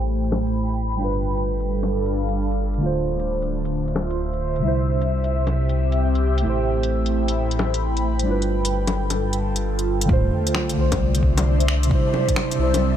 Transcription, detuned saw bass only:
0, 0, Header, 1, 2, 480
1, 0, Start_track
1, 0, Tempo, 454545
1, 1058, Time_signature, 4, 2, 24, 8
1, 13693, End_track
2, 0, Start_track
2, 0, Title_t, "Detuned saw bass"
2, 0, Program_c, 0, 39
2, 0, Note_on_c, 0, 33, 83
2, 1039, Note_off_c, 0, 33, 0
2, 1057, Note_on_c, 0, 31, 84
2, 2960, Note_off_c, 0, 31, 0
2, 2981, Note_on_c, 0, 26, 83
2, 4883, Note_off_c, 0, 26, 0
2, 4900, Note_on_c, 0, 36, 83
2, 6802, Note_off_c, 0, 36, 0
2, 6819, Note_on_c, 0, 33, 82
2, 8722, Note_off_c, 0, 33, 0
2, 8735, Note_on_c, 0, 31, 87
2, 10640, Note_off_c, 0, 31, 0
2, 10657, Note_on_c, 0, 26, 99
2, 10884, Note_off_c, 0, 26, 0
2, 11381, Note_on_c, 0, 36, 81
2, 12569, Note_off_c, 0, 36, 0
2, 13297, Note_on_c, 0, 36, 79
2, 13693, Note_off_c, 0, 36, 0
2, 13693, End_track
0, 0, End_of_file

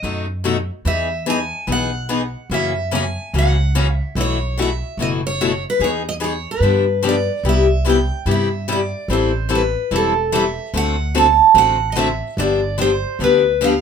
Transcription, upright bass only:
0, 0, Header, 1, 2, 480
1, 0, Start_track
1, 0, Key_signature, 4, "major"
1, 0, Tempo, 411241
1, 1001, Time_signature, 4, 2, 24, 8
1, 8687, Key_signature, 0, "major"
1, 16119, End_track
2, 0, Start_track
2, 0, Title_t, "Upright bass"
2, 0, Program_c, 0, 32
2, 30, Note_on_c, 0, 42, 76
2, 803, Note_off_c, 0, 42, 0
2, 991, Note_on_c, 0, 40, 76
2, 1765, Note_off_c, 0, 40, 0
2, 1953, Note_on_c, 0, 35, 74
2, 2726, Note_off_c, 0, 35, 0
2, 2913, Note_on_c, 0, 42, 83
2, 3687, Note_off_c, 0, 42, 0
2, 3893, Note_on_c, 0, 37, 80
2, 4659, Note_off_c, 0, 37, 0
2, 4848, Note_on_c, 0, 35, 91
2, 5616, Note_off_c, 0, 35, 0
2, 5806, Note_on_c, 0, 30, 74
2, 6575, Note_off_c, 0, 30, 0
2, 6763, Note_on_c, 0, 40, 80
2, 7533, Note_off_c, 0, 40, 0
2, 7706, Note_on_c, 0, 43, 86
2, 8482, Note_off_c, 0, 43, 0
2, 8677, Note_on_c, 0, 36, 81
2, 9449, Note_off_c, 0, 36, 0
2, 9637, Note_on_c, 0, 43, 79
2, 10408, Note_off_c, 0, 43, 0
2, 10602, Note_on_c, 0, 33, 86
2, 11371, Note_off_c, 0, 33, 0
2, 11566, Note_on_c, 0, 28, 77
2, 12333, Note_off_c, 0, 28, 0
2, 12530, Note_on_c, 0, 38, 90
2, 13296, Note_off_c, 0, 38, 0
2, 13474, Note_on_c, 0, 33, 77
2, 14246, Note_off_c, 0, 33, 0
2, 14438, Note_on_c, 0, 31, 84
2, 15208, Note_off_c, 0, 31, 0
2, 15395, Note_on_c, 0, 38, 77
2, 16119, Note_off_c, 0, 38, 0
2, 16119, End_track
0, 0, End_of_file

